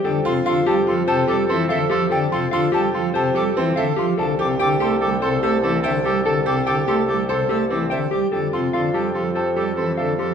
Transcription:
<<
  \new Staff \with { instrumentName = "Flute" } { \time 5/4 \key f \lydian \tempo 4 = 145 g''8 c'''8 c'''8 a''8 c'''8 a''8 d'''8 c'''8 e''8 c'''8 | g''8 c'''8 c'''8 a''8 c'''8 a''8 d'''8 c'''8 e''8 c'''8 | a''8 d'''8 d'''8 c'''8 d'''8 c'''8 e'''8 d'''8 e''8 d'''8 | a''8 d'''8 d'''8 c'''8 d'''8 c'''8 e'''8 d'''8 e''8 d'''8 |
g''8 c'''8 c'''8 a''8 c'''8 a''8 d'''8 c'''8 e''8 c'''8 | }
  \new Staff \with { instrumentName = "Clean electric guitar" } { \time 5/4 \key f \lydian a'8 r8 f''8 g'8 r8 c''8 g'8 r8 f''8 g'8 | a'8 r8 f''8 g'8 r8 c''8 g'8 r8 f''8 g'8 | a'8 r8 g''8 g'8 r8 c''8 g'8 r8 g''8 g'8 | a'8 r8 g''8 g'8 r8 c''8 g'8 r8 g''8 g'8 |
a'8 r8 f''8 g'8 r8 c''8 g'8 r8 f''8 g'8 | }
  \new Staff \with { instrumentName = "Oboe" } { \time 5/4 \key f \lydian a'8 a'8 a'8 a'8 a'8 a'8 a'8 a'8 a'8 a'8 | a'8 a'8 a'8 a'8 a'8 a'8 a'8 a'8 a'8 r8 | a'8 a'8 a'8 a'8 a'8 a'8 a'8 a'8 a'8 a'8 | a'8 a'8 a'8 a'8 a'8 a'8 a'8 a'8 a'8 r8 |
a'8 a'8 a'8 a'8 a'8 a'8 a'8 a'8 a'8 a'8 | }
  \new Staff \with { instrumentName = "Grand piano" } { \time 5/4 \key f \lydian g'8 f'8 f'8 g'8 f'8 g'8 a'8 c'8 a'8 f'8 | g'8 f'8 f'8 g'8 f'8 g'8 a'8 c'8 a'8 f'8 | a'8 g'8 g'8 a'8 g'8 a'8 c''8 c'8 c''8 g'8 | a'8 g'8 g'8 a'8 g'8 a'8 c''8 c'8 c''8 g'8 |
g'8 f'8 f'8 g'8 f'8 g'8 a'8 c'8 a'8 f'8 | }
  \new Staff \with { instrumentName = "Pipe organ" } { \clef bass \time 5/4 \key f \lydian d8 c8 d8 g8 f8 c8 g8 e8 d8 f8 | d8 c8 d8 g8 f8 c8 g8 e8 d8 f8 | d8 c8 d8 a8 g8 c8 a8 e8 d8 g8 | d8 c8 d8 a8 g8 c8 a8 e8 d8 g8 |
d8 c8 d8 g8 f8 r8 g8 e8 d8 f8 | }
  \new Staff \with { instrumentName = "Bassoon" } { \clef bass \time 5/4 \key f \lydian f,1~ f,4~ | f,1~ f,4 | c,1~ c,4~ | c,1~ c,4 |
f,1~ f,4 | }
>>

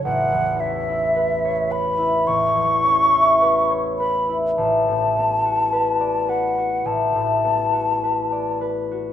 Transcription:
<<
  \new Staff \with { instrumentName = "Flute" } { \time 4/4 \key a \major \tempo 4 = 52 fis''8 e''4 b''8 cis'''4. b''8 | a''4. fis''8 a''4. r8 | }
  \new Staff \with { instrumentName = "Harp" } { \time 4/4 \key a \major <a,, a' cis''>16 e,16 cis'16 e'16 b'16 cis''16 b'16 e'16 a,,16 e,16 cis'16 e'16 b'16 cis''16 b'16 e'16 | a,,16 a,16 b16 fis'16 b'16 d''16 b'16 fis'16 a,,16 a,16 b16 fis'16 b'16 d''16 b'16 fis'16 | }
>>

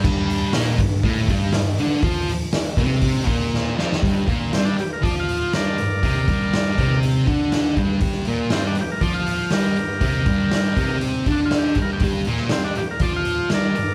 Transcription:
<<
  \new Staff \with { instrumentName = "Transistor combo organ" } { \time 4/4 \key g \minor \tempo 4 = 120 r1 | r1 | r4 c'16 d'16 g'16 bes'16 d''16 f''8. <bes' d''>4~ | <bes' d''>2 r2 |
r4 c'16 d'16 g'16 bes'16 d''16 f''8. <g' bes'>4~ | <g' bes'>2 r8 d'16 f'16 g'8 bes'16 g'16 | r4 c'16 d'16 g'16 bes'16 d''16 f''8. <bes' d''>4 | }
  \new Staff \with { instrumentName = "Distorted electric guitar" } { \clef bass \time 4/4 \key g \minor <g, g>4 <bes, bes>8 g,8 <a, a>8 <g, g>8 g,8 <d d'>8 | <f f'>8 r4 <c c'>4 <bes, bes>4 <f, f>8 | <g, g>8 <bes, bes>8 <g, g>8 r8 <f f'>4 <g, g>8 g,8 | <c c'>8 <g, g>4 <c c'>4 <d d'>4 <g, g>8 |
<g, g>8 <bes, bes>8 <g, g>8 r8 <f f'>4 <g, g>8 g,8 | <c c'>8 <g, g>4 <c c'>4 <d d'>4 <g, g>8 | <g, g>8 <bes, bes>8 <g, g>8 r8 <f f'>4 <g, g>8 g,8 | }
  \new DrumStaff \with { instrumentName = "Drums" } \drummode { \time 4/4 <cymc bd>8 hho8 <hho sn>8 <hho bd>8 <hho bd>8 <hho bd>8 <hho sn>8 hho8 | <hho bd>8 hho8 <hho sn>8 <hho bd>8 <hho bd>8 <hho bd>8 sn8 sn16 sn16 | <hho bd>8 <hho bd>8 <hho sn>8 hho8 <hho bd>8 hho8 <hho sn>8 hho8 | <hho bd>8 <hho bd>8 <hho sn>8 <hho bd>8 hho8 <hho bd>8 <hho sn>8 <hho bd>8 |
<hho bd>16 sn16 hho8 <hho sn>8 hho8 <hho bd>8 hho8 <hho sn>8 hho8 | <hho bd>8 <hho bd>8 <hho sn>8 <hho bd>8 hho8 <hho bd>8 <hho sn>8 <hho bd>8 | <hho bd>8 hho16 sn16 <hho sn>8 hho8 <hho bd>8 hho8 <hho sn>8 hho8 | }
>>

